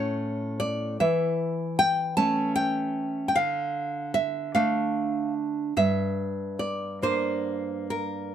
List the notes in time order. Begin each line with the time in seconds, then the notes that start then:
Already playing: A2 A3 C#4 C#5
0.60 D5
1.00 E3 E5
1.79 G5
2.17 A3 C#4 A5
2.56 G5
3.28 G5
3.35 D3 F5
4.14 E5
4.55 A3 D4 F5
5.77 G2 E5
6.59 D5
7.02 A#3 D4 C5
7.90 A#4